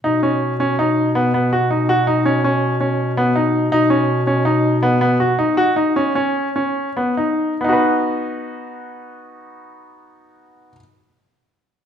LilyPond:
<<
  \new Staff \with { instrumentName = "Grand piano" } { \time 5/4 \key b \major \tempo 4 = 158 dis'8 cis'4 cis'8 dis'4 b8 b8 fis'8 dis'8 | fis'8 dis'8 cis'8 cis'4 cis'4 b8 dis'4 | dis'8 cis'4 cis'8 dis'4 b8 b8 fis'8 dis'8 | fis'8 dis'8 cis'8 cis'4 cis'4 b8 dis'4 |
<b dis' fis' b'>1~ <b dis' fis' b'>4~ | <b dis' fis' b'>1~ <b dis' fis' b'>4 | }
  \new Staff \with { instrumentName = "Bass clarinet" } { \clef bass \time 5/4 \key b \major b,1~ b,4~ | b,1~ b,4 | b,1~ b,4 | r1 r4 |
r1 r4 | r1 r4 | }
>>